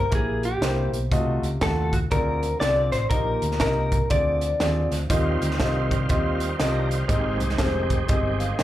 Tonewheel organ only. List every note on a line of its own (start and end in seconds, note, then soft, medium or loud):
5.10 7.06 D#3 medium
5.10 7.05 G3 medium
5.10 7.06 C4 medium
5.10 6.56 F4 medium
6.60 6.90 D4 medium
6.60 6.89 A#4 medium
6.90 7.38 F4 medium
7.08 8.63 D#3 medium
7.08 8.63 G#3 medium
7.08 7.16 A#3 medium
7.08 8.55 G4 medium
7.14 8.63 C4 medium
8.58 8.63 D#4 medium
8.58 8.63 C5 medium